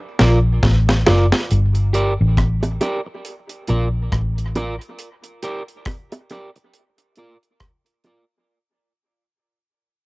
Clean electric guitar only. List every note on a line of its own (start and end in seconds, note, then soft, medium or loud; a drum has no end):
0.19 0.38 F4 medium
0.19 0.38 A#4 medium
0.19 0.39 D5 medium
1.06 1.25 F4 medium
1.06 1.26 A#4 medium
1.06 1.26 D5 medium
1.93 2.12 G4 medium
1.93 2.13 A#4 medium
1.93 2.13 D5 medium
2.81 3.00 G4 medium
2.81 3.00 A#4 medium
2.81 3.00 D5 medium
3.07 muted clean electric guitar stroke soft
3.68 3.87 F4 medium
3.68 3.87 A#4 medium
3.68 3.88 D5 medium
4.55 4.74 F4 medium
4.55 4.75 A#4 medium
4.55 4.75 D5 medium
5.43 5.61 G4 medium
5.43 5.62 A#4 medium
5.43 5.62 D5 medium
6.31 6.49 G4 medium
6.31 6.49 A#4 medium
6.31 6.50 D5 medium
6.56 muted clean electric guitar stroke soft
7.18 7.36 F4 medium
7.18 7.36 A#4 medium
7.18 7.37 D5 medium
8.05 8.23 F4 medium
8.05 8.24 A#4 medium
8.05 8.24 D5 medium